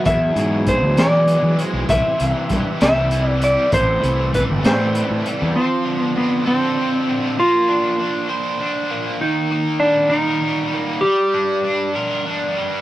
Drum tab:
HH |xxxxxx|xxxxxx|xxxxxx|------|
SD |---o--|---o--|---o--|------|
BD |o-o---|o-o---|o-o---|------|

HH |------|------|------|
SD |------|------|------|
BD |------|------|------|